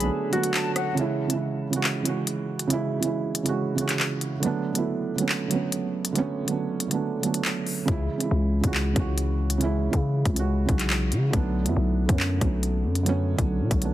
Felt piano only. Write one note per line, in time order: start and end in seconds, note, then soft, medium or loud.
0.00 0.30 D3 medium
0.00 0.31 F#3 medium
0.00 0.33 A3 medium
0.00 0.02 B3 medium
0.00 0.28 B3 medium
0.00 0.99 C#4 loud
0.00 0.03 D4 medium
0.00 0.29 D4 medium
0.30 0.85 D3 medium
0.30 0.86 F#3 medium
0.30 0.86 A3 medium
0.34 0.87 B3 medium
0.34 0.88 D4 medium
0.95 1.23 C#3 loud
0.95 1.24 E3 medium
0.95 1.24 G#3 medium
0.99 1.25 C#4 medium
0.99 1.26 E4 loud
1.27 1.64 C#3 medium
1.27 1.65 E3 medium
1.27 1.66 G#3 medium
1.31 1.66 C#4 medium
1.31 1.67 E4 medium
1.70 1.98 C#3 medium
1.70 1.99 E3 medium
1.70 2.00 G#3 medium
1.75 2.01 C#4 medium
1.75 2.01 F#4 medium
2.03 2.58 C#3 medium
2.03 2.58 E3 medium
2.03 2.59 G#3 medium
2.07 2.60 C#4 medium
2.07 2.60 F#4 medium
2.67 2.96 C#3 loud
2.67 2.96 E3 medium
2.67 2.97 G#3 medium
2.72 2.98 C#4 medium
2.72 2.98 E4 loud
2.99 3.37 C#3 medium
2.99 3.37 E3 medium
2.99 3.38 G#3 medium
3.04 3.39 C#4 medium
3.04 3.40 E4 medium
3.43 3.71 C#3 medium
3.43 3.72 E3 medium
3.43 3.72 G#3 medium
3.47 3.73 C#4 medium
3.47 3.74 F#4 medium
3.75 4.30 C#3 medium
3.75 4.31 E3 medium
3.75 4.31 G#3 medium
3.79 4.32 C#4 medium
3.79 4.33 F#4 medium
4.40 4.68 D3 medium
4.40 4.69 F#3 medium
4.40 4.70 A3 medium
4.44 4.70 B3 medium
4.44 4.71 D4 loud
4.72 5.09 D3 medium
4.72 5.10 F#3 medium
4.72 5.11 A3 medium
4.77 5.12 B3 medium
4.77 5.12 E4 medium
5.16 5.44 D3 medium
5.16 5.44 F#3 medium
5.16 5.45 A3 medium
5.20 5.46 B3 medium
5.20 5.47 C#4 medium
5.48 6.03 D3 medium
5.48 6.04 F#3 medium
5.48 6.04 A3 medium
5.53 6.05 B3 medium
5.53 6.06 C#4 medium
6.12 6.41 D3 medium
6.12 6.41 F#3 medium
6.12 6.42 A3 medium
6.17 6.43 B3 medium
6.17 6.44 C#4 loud
6.45 6.82 D3 medium
6.45 6.83 F#3 medium
6.45 6.84 A3 medium
6.49 6.84 B3 medium
6.49 6.85 D4 medium
6.88 7.16 D3 medium
6.88 7.17 F#3 medium
6.88 7.18 A3 medium
6.92 7.19 B3 medium
6.92 7.19 D4 medium
7.21 7.75 D3 medium
7.21 7.76 F#3 medium
7.21 7.77 A3 medium
7.25 7.78 B3 medium
7.25 7.78 D4 medium
7.85 8.14 C#3 loud
7.85 8.14 E3 medium
7.85 8.15 G#3 medium
7.90 8.16 C#4 medium
7.90 8.16 E4 loud
8.18 8.55 C#3 medium
8.18 8.55 E3 medium
8.18 8.56 G#3 medium
8.22 8.57 C#4 medium
8.22 8.58 E4 medium
8.61 8.89 C#3 medium
8.61 8.90 E3 medium
8.61 8.91 G#3 medium
8.65 8.91 C#4 medium
8.65 8.92 F#4 medium
8.93 9.48 C#3 medium
8.93 9.49 E3 medium
8.93 9.50 G#3 medium
8.98 9.50 C#4 medium
8.98 9.51 F#4 medium
9.58 9.86 C#3 medium
9.58 9.87 E3 medium
9.58 9.88 G#3 medium
9.62 9.88 C#4 medium
9.62 9.89 E4 loud
9.90 10.27 C#3 medium
9.90 10.28 E3 medium
9.90 10.29 G#3 medium
9.94 10.29 C#4 medium
9.94 10.30 E4 medium
10.34 10.62 C#3 medium
10.34 10.62 E3 medium
10.34 10.63 G#3 medium
10.38 10.64 C#4 medium
10.38 10.65 F#4 medium
10.66 11.21 C#3 medium
10.66 11.21 E3 medium
10.66 11.22 G#3 medium
10.70 11.23 C#4 medium
10.70 11.24 F#4 medium
11.30 11.59 D3 medium
11.30 11.60 F#3 medium
11.30 11.60 A3 medium
11.35 11.61 B3 medium
11.35 11.62 D4 loud
11.63 12.00 D3 medium
11.63 12.01 F#3 medium
11.63 12.02 A3 medium
11.67 12.02 B3 medium
11.67 12.03 E4 medium
12.06 12.34 D3 medium
12.06 12.35 F#3 medium
12.06 12.36 A3 medium
12.11 12.37 B3 medium
12.11 12.37 C#4 medium
12.39 12.94 D3 medium
12.39 12.94 F#3 medium
12.39 12.95 A3 medium
12.43 12.96 B3 medium
12.43 12.97 C#4 medium
13.03 13.31 D3 medium
13.03 13.32 F#3 medium
13.03 13.33 A3 medium
13.07 13.34 B3 medium
13.07 13.34 C#4 loud
13.36 13.73 D3 medium
13.36 13.74 F#3 medium
13.36 13.74 A3 medium
13.40 13.75 B3 medium
13.40 13.76 D4 medium
13.79 13.94 D3 medium
13.79 13.94 F#3 medium
13.79 13.94 A3 medium
13.83 13.94 B3 medium
13.83 13.94 D4 medium